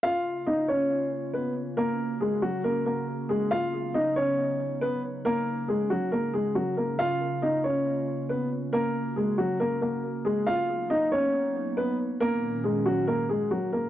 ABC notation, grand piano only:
X:1
M:4/4
L:1/8
Q:1/4=138
K:Bbphr
V:1 name="Grand piano"
[Ff]2 [Ee] [Dd]3 [Cc] z | [B,B]2 [A,A] [G,G] [B,B] [B,B]2 [A,A] | [Ff]2 [^D^d] [_D_d]3 [=B,=B] z | [B,B]2 [A,A] [G,G] [B,B] [A,A] [G,G] [B,B] |
[Ff]2 [Ee] [Dd]3 [Cc] z | [B,B]2 [A,A] [G,G] [B,B] [B,B]2 [A,A] | [Ff]2 [^D^d] [_D_d]3 [=B,=B] z | [B,B]2 [A,A] [G,G] [B,B] [A,A] [G,G] [B,B] |]